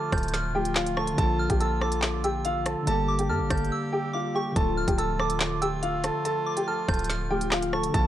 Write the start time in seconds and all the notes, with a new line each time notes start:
Already playing: D3 F3 A3 F4 A4 A5 F6
0.12 D1 A4 A5 G6, kick, cross-stick, closed hi-hat
0.18 closed hi-hat
0.23 closed hi-hat
0.28 closed hi-hat
0.34 F6, snare, closed hi-hat
0.53 D3 F3 A3 G4 G5
0.57 F4
0.65 closed hi-hat
0.76 F4 F5, snare, clap
0.86 closed hi-hat
0.97 A4 A5 C#6, cross-stick
1.07 closed hi-hat
1.13 D3 F3
1.18 A#1 A#3 A4 A5, kick, closed hi-hat
1.23 F4
1.39 F6
1.50 A#1 G4 G5, kick, closed hi-hat
1.60 A4 A5 E6, closed hi-hat
1.81 A4 A5 D6, cross-stick
1.92 closed hi-hat
2.02 snare, clap
2.24 G4 G5 E6, closed hi-hat
2.45 A1 F4 F5, closed hi-hat
2.61 A#1
2.66 A4 A5, cross-stick, closed hi-hat
2.82 D3 G3
2.87 G1 G3 A#3 G4 A4 A5, closed hi-hat
2.92 G4
3.08 D6
3.19 G4 G5, closed hi-hat
3.29 G2 A4 A5 F6
3.40 G1
3.50 G1 A4 A5 G6, kick, cross-stick, closed hi-hat
3.57 closed hi-hat
3.65 closed hi-hat
3.72 E6
3.93 G4 G5
4.13 F4 F5 D6
4.35 G4 G5 C#6
4.52 D3 F3
4.56 D1 D3 F3 A3 F4 A4 A5, kick, closed hi-hat
4.61 F4
4.77 F6
4.88 D1 G4 G5, kick, closed hi-hat
4.98 A4 A5 E6, closed hi-hat
5.19 A4 A5 D6, cross-stick
5.30 closed hi-hat
5.40 snare, clap
5.62 G4 G5 E6, closed hi-hat
5.83 F4 F5, closed hi-hat
6.04 A4 A5, cross-stick, closed hi-hat
6.25 A4 A5, closed hi-hat
6.46 D6
6.57 G4 G5, closed hi-hat
6.67 A4 A5 F6
6.88 D1 A4 A5 G6, kick, cross-stick, closed hi-hat
6.94 closed hi-hat
6.99 closed hi-hat
7.04 closed hi-hat
7.10 F6, snare, closed hi-hat
7.29 D3 F3 A3 G4 G5
7.33 F4
7.41 closed hi-hat
7.52 F4 F5, snare, clap
7.62 closed hi-hat
7.73 A4 A5 C#6, cross-stick
7.83 closed hi-hat
7.89 D3 F3
7.94 A#1 F3 A#3 F4 A4 A5, kick, closed hi-hat
7.99 F4